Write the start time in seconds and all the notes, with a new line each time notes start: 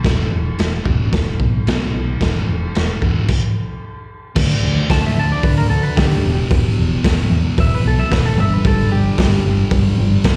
0.03 E1 E2 B2 E3, kick, snare, crash
0.32 E1
0.59 E1, snare, crash
0.84 E1 E2 B2 E3, kick
1.13 E1, kick, snare, crash
1.40 B1, kick
1.67 B1 E2 B2 E3, snare, crash
1.94 B1
2.21 E1 E2 B2 E3, kick, snare, crash
2.49 E1
2.75 E1, snare, crash
3.02 E2 B2 E3, kick
3.28 kick, crash
4.35 D2 D3 A3 D4, kick, crash
4.63 D2
4.89 D2 D3 A3 D4 A5, kick, snare, open hi-hat
5.07 E5
5.16 D2 A3 D4 A5
5.32 D5
5.43 D2 B4, kick, open hi-hat
5.58 A#4
5.70 D2 A4
5.83 B4
5.96 D2 D3 A3 G4, kick, snare, open hi-hat
6.01 D4
6.24 E1 E2 B2 E3
6.50 E1 E2 B2, kick, open hi-hat
6.54 E3
6.77 E1
7.03 E1 E2 B2, kick, snare, open hi-hat
7.07 E3
7.30 E2 E3
7.34 B2
7.58 E1 E5, kick, open hi-hat
7.75 B4
7.84 B1 A4
7.99 E5
8.09 E1 E2 B2 E3 B4, kick, snare, open hi-hat
8.25 A4
8.36 G1 D3 G3 E5
8.40 G2
8.54 B4
8.63 G1 G2 D3 G3 A4, kick, open hi-hat
8.91 G1 G4
9.17 G1 G2 D3 G3, kick, snare, open hi-hat
9.44 G1 G3
9.49 D3
9.71 G1, kick, open hi-hat
9.98 G1
10.24 G1 G2 D3 G3, kick, snare, open hi-hat